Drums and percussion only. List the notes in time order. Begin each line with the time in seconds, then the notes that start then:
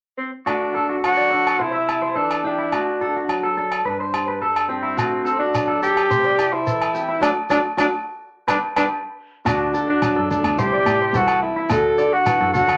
0.47 low agogo
1.04 low agogo
1.47 low agogo
1.89 low agogo
2.31 low agogo
2.72 low agogo
3.29 low agogo
3.72 low agogo
4.14 low agogo
4.56 low agogo
4.98 low agogo, shekere
5.26 shekere
5.54 low agogo, shekere
5.83 shekere
5.97 low agogo
6.11 shekere
6.39 low agogo, shekere
6.67 shekere
6.82 low agogo
6.95 shekere
7.22 low agogo, shekere
7.50 low agogo, shekere
7.78 low agogo, shekere
8.48 low agogo, shekere
8.76 low agogo, shekere
9.46 muted conga, low agogo, shekere
9.74 shekere
10.02 high conga, low agogo, shekere
10.31 muted conga, high conga, shekere
10.44 low agogo
10.59 muted conga, shekere
10.86 muted conga, low agogo, shekere
11.14 high conga, shekere
11.28 low agogo
11.70 muted conga, low agogo, shekere
11.98 shekere
12.26 high conga, low agogo, shekere
12.54 muted conga, high conga, low conga, shekere
12.69 low agogo